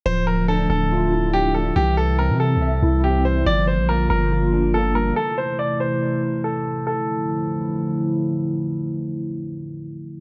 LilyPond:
<<
  \new Staff \with { instrumentName = "Grand piano" } { \time 4/4 \key d \minor \tempo 4 = 141 c''8 bes'8 a'8 a'4. g'8 a'8 | g'8 a'8 bes'8 a'4. g'8 c''8 | d''8 c''8 bes'8 bes'4. a'8 bes'8 | a'8 c''8 d''8 c''4. a'4 |
a'2. r4 | r1 | }
  \new Staff \with { instrumentName = "Tine electric piano" } { \time 4/4 \key d \minor f4 d'4 f'8 e'8 d'8 a8 | e4 c'4 e''8 e'8 c'8 g8 | f4 bes4 f'8 d'8 bes8 g8 | r1 |
r1 | r1 | }
  \new Staff \with { instrumentName = "Analog synth pad" } { \clef bass \time 4/4 \key d \minor << { e''1~ | e''1 | f'1 | e'1 |
<d f a e'>1~ | <d f a e'>1 | } \\ { <d f a>1 | <c e g>1 | <d bes>1 | <c e a>1 |
r1 | r1 | } >> }
  \new Staff \with { instrumentName = "808-style bass" } { \clef bass \time 4/4 \key d \minor d,,4. d,,2~ d,,8 | c,4~ c,16 c8~ c32 c,8~ c,32 c,4. | g,,8. bes,,8. g,,2~ g,,8 | r1 |
r1 | r1 | }
>>